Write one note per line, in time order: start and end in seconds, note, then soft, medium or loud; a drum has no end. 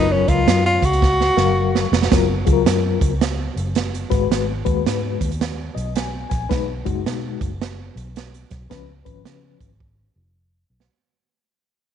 0.00 0.23 F#1 loud
0.00 0.63 F#3 medium
0.00 0.13 D#4 loud
0.00 0.63 F4 medium
0.00 0.63 A#4 medium
0.12 0.30 C#4 medium
0.28 0.45 C#2 medium
0.28 0.65 F4 medium
0.28 kick medium
0.28 closed hi-hat medium
0.46 0.77 F#2 medium
0.46 snare loud
0.46 closed hi-hat medium
0.66 0.86 F4 medium
0.82 1.30 C#2 medium
0.82 1.93 F#4 loud
0.82 kick medium
0.82 closed hi-hat medium
0.93 closed hi-hat medium
1.02 kick medium
1.02 snare medium
1.21 snare medium
1.37 1.85 F#1 medium
1.37 1.86 F#3 medium
1.37 1.86 A#4 medium
1.37 1.86 F5 medium
1.37 snare medium
1.75 snare medium
1.92 2.09 F1 medium
1.92 snare medium
2.02 snare medium
2.11 2.42 F#1 loud
2.11 2.33 F#3 medium
2.11 2.33 F4 medium
2.11 2.33 A#4 loud
2.11 kick loud
2.11 snare loud
2.11 closed hi-hat loud
2.46 2.64 C#2 medium
2.46 3.10 F#3 medium
2.46 3.10 F4 medium
2.46 2.51 G#4 medium
2.46 kick medium
2.46 closed hi-hat medium
2.53 3.13 A#4 loud
2.66 2.97 F#2 loud
2.66 snare loud
2.66 closed hi-hat medium
3.01 3.49 C#2 medium
3.01 kick medium
3.01 closed hi-hat medium
3.21 snare loud
3.21 closed hi-hat medium
3.56 4.04 F#1 medium
3.56 closed hi-hat medium
3.75 snare loud
3.75 closed hi-hat medium
3.95 closed hi-hat medium
4.10 4.28 G#1 loud
4.10 4.52 G#3 medium
4.10 4.51 F#4 medium
4.10 4.52 B4 loud
4.10 kick loud
4.10 snare soft
4.10 closed hi-hat medium
4.30 4.61 G#1 loud
4.30 snare loud
4.30 closed hi-hat loud
4.65 4.83 D#2 medium
4.65 5.29 G#3 medium
4.65 5.29 F#4 medium
4.65 5.29 B4 medium
4.65 kick medium
4.65 closed hi-hat medium
4.86 5.16 G#2 medium
4.86 snare loud
4.86 closed hi-hat medium
5.21 5.68 D#2 medium
5.21 kick medium
5.21 closed hi-hat medium
5.32 closed hi-hat medium
5.41 snare loud
5.41 closed hi-hat medium
5.75 6.23 B1 medium
5.75 5.94 D#5 medium
5.75 closed hi-hat medium
5.96 6.28 G#5 medium
5.96 snare loud
5.96 closed hi-hat medium
6.30 6.48 A#1 medium
6.30 6.48 G#5 medium
6.30 kick medium
6.30 snare soft
6.30 closed hi-hat medium
6.49 6.81 B1 medium
6.49 6.71 G#3 medium
6.49 6.71 D#4 medium
6.49 6.71 B4 loud
6.49 kick loud
6.49 snare loud
6.49 closed hi-hat medium
6.85 7.03 F#1 medium
6.85 7.49 G#3 medium
6.85 7.49 D#4 medium
6.85 7.49 F#4 medium
6.85 kick medium
6.85 closed hi-hat medium
7.06 7.36 B2 medium
7.06 snare loud
7.06 closed hi-hat medium
7.41 7.88 F#1 medium
7.41 kick medium
7.41 closed hi-hat medium
7.62 snare loud
7.62 closed hi-hat medium
7.96 8.43 B1 medium
7.96 closed hi-hat medium
8.16 snare medium
8.16 closed hi-hat medium
8.34 closed hi-hat medium
8.51 8.68 B1 medium
8.51 kick loud
8.51 snare soft
8.51 closed hi-hat medium
8.70 9.01 C#2 loud
8.70 8.91 F3 medium
8.70 8.92 C#4 medium
8.70 8.92 B4 loud
8.70 kick loud
8.70 snare loud
8.70 closed hi-hat medium
9.05 9.23 G#1 medium
9.05 9.69 F3 medium
9.05 9.69 C#4 medium
9.05 9.69 B4 medium
9.05 kick medium
9.05 closed hi-hat medium
9.25 9.56 C#3 medium
9.25 snare loud
9.25 closed hi-hat medium
9.60 10.08 G#1 medium
9.60 kick medium
9.60 closed hi-hat medium
9.80 kick medium
10.16 10.63 F1 medium
10.70 10.87 B1 medium
10.80 snare medium